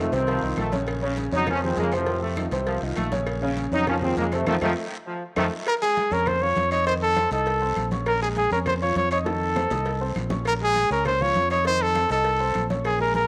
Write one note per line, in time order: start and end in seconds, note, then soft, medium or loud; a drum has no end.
0.00 0.13 C3 medium
0.00 0.13 A3 medium
0.00 0.10 D#4 medium
0.00 0.10 F4 medium
0.12 0.40 C2 loud
0.12 0.37 C3 loud
0.12 0.70 D#3 medium
0.12 0.37 C4 medium
0.12 0.69 C4 loud
0.12 0.37 C5 loud
0.12 cowbell medium
0.12 high conga soft
0.12 short guiro medium
0.27 0.43 F3 medium
0.27 cowbell loud
0.27 long guiro medium
0.43 0.56 C2 medium
0.43 0.67 D#3 medium
0.43 0.67 D#4 medium
0.43 0.67 F4 medium
0.43 high conga soft
0.57 1.27 A#1 medium
0.57 0.73 A3 medium
0.57 cowbell medium
0.57 high conga medium
0.57 short guiro medium
0.57 claves medium
0.72 0.97 C#3 loud
0.72 0.97 C#4 loud
0.72 0.97 C#5 loud
0.72 cowbell medium
0.72 high conga loud
0.72 short guiro medium
0.87 cowbell loud
0.87 long guiro medium
0.87 claves medium
1.02 1.27 C#3 loud
1.02 1.26 C#3 medium
1.02 1.27 C#4 medium
1.02 1.27 C#5 loud
1.02 high conga soft
1.17 cowbell medium
1.17 high conga medium
1.17 short guiro medium
1.32 1.74 F2 loud
1.32 1.57 C#3 medium
1.32 1.48 F#3 medium
1.32 1.57 C#4 loud
1.32 1.48 D#4 loud
1.32 1.57 C#5 loud
1.32 short guiro medium
1.47 1.63 F3 medium
1.47 1.63 C#4 loud
1.47 cowbell loud
1.47 high conga soft
1.47 low conga medium
1.47 long guiro medium
1.47 claves medium
1.62 1.77 D#3 medium
1.62 1.88 F3 medium
1.62 1.77 C4 medium
1.62 1.88 F4 medium
1.62 1.88 G#4 medium
1.62 high conga soft
1.76 2.47 F2 medium
1.76 1.94 C#3 medium
1.76 1.93 G#3 medium
1.76 1.93 A#3 loud
1.76 cowbell medium
1.76 high conga medium
1.76 short guiro medium
1.92 2.21 A2 medium
1.92 2.05 C3 medium
1.92 2.21 F3 medium
1.92 2.05 C4 loud
1.92 2.05 C5 medium
1.92 cowbell medium
1.92 high conga soft
1.92 short guiro medium
1.92 claves medium
2.06 2.33 C3 medium
2.06 2.33 C4 medium
2.06 2.33 C5 medium
2.06 cowbell loud
2.06 long guiro medium
2.22 2.46 A3 medium
2.22 high conga soft
2.37 2.50 D#3 medium
2.37 2.50 D#4 medium
2.37 2.50 F4 medium
2.37 cowbell medium
2.37 high conga medium
2.37 short guiro medium
2.37 claves medium
2.51 2.80 C2 loud
2.51 2.77 C3 loud
2.51 2.77 C4 medium
2.51 2.77 C5 medium
2.51 cowbell medium
2.51 high conga soft
2.51 short guiro medium
2.66 2.82 F3 medium
2.66 cowbell loud
2.66 high conga soft
2.66 long guiro medium
2.82 2.96 C2 medium
2.82 3.07 D#3 medium
2.82 3.07 D#4 medium
2.82 3.07 F4 medium
2.82 high conga soft
2.96 3.67 A#1 medium
2.96 3.12 A3 medium
2.96 cowbell medium
2.96 high conga medium
2.96 short guiro medium
2.96 claves medium
3.12 3.37 C#3 medium
3.12 3.37 C#4 loud
3.12 3.37 C#5 loud
3.12 cowbell medium
3.12 high conga loud
3.12 short guiro medium
3.27 cowbell loud
3.27 high conga soft
3.27 long guiro medium
3.27 claves medium
3.42 3.66 C#3 medium
3.42 3.67 C#3 loud
3.42 3.67 C#4 loud
3.42 3.67 C#5 loud
3.42 high conga soft
3.57 cowbell medium
3.57 high conga medium
3.57 short guiro medium
3.72 4.14 F2 loud
3.72 3.97 C#3 loud
3.72 3.87 F#3 medium
3.72 3.97 C#4 loud
3.72 3.87 D#4 loud
3.72 3.97 C#5 medium
3.72 short guiro medium
3.86 4.02 F3 medium
3.86 3.95 F3 medium
3.86 3.95 C#4 loud
3.86 cowbell loud
3.86 high conga soft
3.86 low conga medium
3.86 long guiro medium
3.86 claves medium
4.02 4.17 D#3 medium
4.02 4.27 F3 medium
4.02 4.17 C4 loud
4.02 4.27 F4 medium
4.02 4.27 G#4 medium
4.02 high conga soft
4.02 low conga medium
4.17 4.45 F2 medium
4.17 4.25 C#3 medium
4.17 4.33 G#3 medium
4.17 4.24 A#3 loud
4.17 cowbell medium
4.17 high conga medium
4.17 short guiro medium
4.32 4.45 C3 loud
4.32 4.47 C3 medium
4.32 4.47 A3 medium
4.32 4.45 C4 loud
4.32 4.45 C5 loud
4.32 cowbell medium
4.32 high conga soft
4.32 short guiro medium
4.32 claves medium
4.46 4.58 F2 loud
4.46 4.55 D#3 loud
4.46 4.55 F3 medium
4.46 4.55 A3 loud
4.46 4.56 C4 loud
4.46 4.57 D#4 medium
4.46 4.57 F4 loud
4.46 cowbell medium
4.46 high conga loud
4.46 long guiro loud
4.46 claves loud
4.61 4.73 F2 loud
4.61 4.69 D#3 loud
4.61 4.70 F3 loud
4.61 4.69 A3 loud
4.61 4.86 A3 medium
4.61 4.71 C4 loud
4.61 4.71 D#4 loud
4.61 4.71 F4 loud
4.61 cowbell loud
4.61 high conga loud
4.61 long guiro loud
4.61 claves loud
5.06 5.22 F3 medium
5.36 5.48 F2 medium
5.36 5.45 D#3 loud
5.36 5.44 F3 loud
5.36 5.53 A3 medium
5.36 5.44 A3 loud
5.36 5.46 C4 loud
5.36 5.46 D#4 loud
5.36 5.46 F4 loud
5.36 cowbell medium
5.36 high conga loud
5.36 long guiro loud
5.36 claves medium
5.66 5.75 A#4 loud
5.66 cowbell loud
5.66 high conga soft
5.66 long guiro medium
5.66 claves medium
5.82 6.07 G#3 medium
5.82 6.14 G#4 loud
5.82 6.07 G#4 medium
5.82 6.07 G#5 medium
5.82 high conga soft
5.96 cowbell medium
5.96 high conga medium
5.96 short guiro medium
6.11 6.53 F2 loud
6.11 6.36 C#4 medium
6.11 6.29 A#4 loud
6.11 6.37 C#5 medium
6.11 6.37 C#6 medium
6.11 short guiro medium
6.26 6.44 C5 loud
6.26 cowbell loud
6.26 high conga soft
6.26 low conga medium
6.26 long guiro medium
6.26 claves medium
6.42 6.66 F3 medium
6.42 6.66 F4 medium
6.42 6.71 C#5 loud
6.42 6.67 F5 medium
6.42 high conga soft
6.56 7.26 F2 medium
6.56 cowbell medium
6.56 high conga medium
6.56 short guiro medium
6.71 6.84 D#4 medium
6.71 6.86 C#5 loud
6.71 6.84 D#5 medium
6.71 6.84 D#6 medium
6.71 cowbell medium
6.71 high conga soft
6.71 short guiro medium
6.71 claves medium
6.86 7.11 D#3 medium
6.86 7.11 D#4 medium
6.86 6.94 C5 loud
6.86 7.11 D#5 medium
6.86 cowbell loud
6.86 high conga soft
6.86 long guiro medium
7.02 7.30 A4 loud
7.02 high conga soft
7.16 7.29 C4 medium
7.16 7.29 C5 medium
7.16 7.29 C6 medium
7.16 cowbell medium
7.16 high conga medium
7.16 short guiro medium
7.16 claves medium
7.31 7.73 C2 loud
7.31 7.56 D#4 medium
7.31 7.88 A4 loud
7.31 7.57 D#5 medium
7.31 7.57 D#6 medium
7.31 cowbell medium
7.31 high conga soft
7.31 short guiro medium
7.46 cowbell loud
7.46 high conga soft
7.46 long guiro medium
7.61 7.86 C4 medium
7.61 7.86 C5 medium
7.61 7.86 C6 medium
7.61 high conga soft
7.76 8.46 A#1 medium
7.76 cowbell medium
7.76 high conga medium
7.76 short guiro medium
7.76 claves medium
7.91 8.16 C#4 medium
7.91 8.16 C#5 medium
7.91 8.16 C#6 medium
7.91 cowbell medium
7.91 high conga medium
7.91 short guiro medium
8.06 8.21 A#4 loud
8.06 cowbell loud
8.06 long guiro medium
8.06 claves medium
8.22 8.46 G#3 medium
8.22 8.46 G#4 medium
8.22 8.29 G#4 loud
8.22 8.46 G#5 medium
8.22 high conga soft
8.36 8.51 G#4 loud
8.36 cowbell medium
8.36 high conga medium
8.36 short guiro medium
8.51 8.93 F2 medium
8.51 8.76 C#4 medium
8.51 8.59 A#4 medium
8.51 8.76 C#5 medium
8.51 8.77 C#6 medium
8.51 short guiro medium
8.66 8.74 C5 loud
8.66 cowbell loud
8.66 high conga soft
8.66 low conga medium
8.66 long guiro medium
8.66 claves medium
8.81 9.06 F3 medium
8.81 9.06 F4 medium
8.81 8.96 C#5 medium
8.81 9.07 F5 medium
8.81 high conga soft
8.96 9.65 F2 medium
8.96 9.11 C#5 loud
8.96 cowbell medium
8.96 high conga medium
8.96 short guiro medium
9.11 9.24 D#4 medium
9.11 9.19 C#5 medium
9.11 9.24 D#5 medium
9.11 9.24 D#6 medium
9.11 cowbell medium
9.11 short guiro medium
9.11 claves medium
9.26 9.51 D#3 medium
9.26 9.51 D#4 medium
9.26 10.12 A4 medium
9.26 9.51 D#5 medium
9.26 cowbell loud
9.26 high bongo loud
9.26 long guiro medium
9.41 high conga soft
9.55 9.68 C4 medium
9.55 9.68 C5 medium
9.55 9.68 C6 medium
9.55 cowbell medium
9.55 low bongo medium
9.55 high conga medium
9.55 short guiro medium
9.55 claves medium
9.70 10.13 C2 loud
9.70 9.95 D#4 medium
9.70 9.95 D#5 medium
9.70 9.96 D#6 medium
9.70 cowbell medium
9.70 low bongo loud
9.70 short guiro medium
9.85 cowbell loud
9.85 high conga soft
9.85 long guiro medium
10.01 10.25 C4 medium
10.01 10.26 C5 medium
10.01 10.26 C6 medium
10.01 high conga soft
10.15 10.85 A#1 medium
10.15 cowbell medium
10.15 high conga medium
10.15 short guiro medium
10.15 claves medium
10.30 10.55 C#4 medium
10.30 10.55 C#5 medium
10.30 10.55 C#6 medium
10.30 cowbell medium
10.30 low bongo medium
10.30 high conga loud
10.30 short guiro medium
10.45 10.54 A#4 loud
10.45 cowbell loud
10.45 long guiro medium
10.45 claves medium
10.61 10.85 G#3 medium
10.61 10.85 G#4 medium
10.61 10.90 G#4 loud
10.61 10.86 G#5 medium
10.61 high conga soft
10.75 cowbell medium
10.75 high conga medium
10.75 short guiro medium
10.90 11.32 C#2 medium
10.90 11.15 C#4 medium
10.90 11.06 A#4 loud
10.90 11.15 C#5 medium
10.90 11.16 C#6 medium
10.90 short guiro medium
11.05 11.24 C5 loud
11.05 cowbell loud
11.05 high conga soft
11.05 low conga medium
11.05 long guiro medium
11.05 claves medium
11.21 11.45 F3 medium
11.21 11.45 F4 medium
11.21 11.51 C#5 loud
11.21 11.46 F5 medium
11.21 high conga soft
11.21 low conga medium
11.35 12.05 F2 loud
11.35 cowbell medium
11.35 high conga medium
11.35 short guiro medium
11.50 11.63 D#4 medium
11.50 11.65 C#5 loud
11.50 11.63 D#5 medium
11.50 11.63 D#6 medium
11.50 cowbell medium
11.50 high conga soft
11.50 short guiro medium
11.50 claves medium
11.65 11.90 D#3 medium
11.65 11.90 D#4 medium
11.65 11.84 C5 loud
11.65 11.90 D#5 medium
11.65 cowbell loud
11.65 high conga soft
11.65 long guiro medium
11.81 12.11 A4 loud
11.81 high conga soft
11.95 12.08 C4 medium
11.95 12.08 C5 medium
11.95 12.08 C6 medium
11.95 cowbell medium
11.95 high conga medium
11.95 short guiro medium
11.95 claves medium
12.10 12.52 C2 loud
12.10 12.35 D#4 medium
12.10 12.67 A4 loud
12.10 12.35 D#5 medium
12.10 12.35 D#6 medium
12.10 cowbell medium
12.10 short guiro medium
12.25 cowbell loud
12.25 high conga soft
12.25 long guiro medium
12.40 12.65 C4 medium
12.40 12.65 C5 medium
12.40 12.65 C6 medium
12.40 high conga soft
12.55 13.24 A#1 medium
12.55 cowbell medium
12.55 high conga medium
12.55 short guiro medium
12.55 claves medium
12.70 12.95 C#4 medium
12.70 12.95 C#5 medium
12.70 12.95 C#6 medium
12.70 cowbell medium
12.70 high conga medium
12.70 short guiro medium
12.85 12.99 G#4 loud
12.85 cowbell loud
12.85 high conga soft
12.85 long guiro medium
12.85 claves medium
13.00 13.24 G#3 medium
13.00 13.24 G#4 medium
13.00 13.15 A#4 loud
13.00 13.25 G#5 medium
13.00 high conga soft
13.14 13.27 A#4 loud
13.14 cowbell medium
13.14 high conga medium
13.14 short guiro medium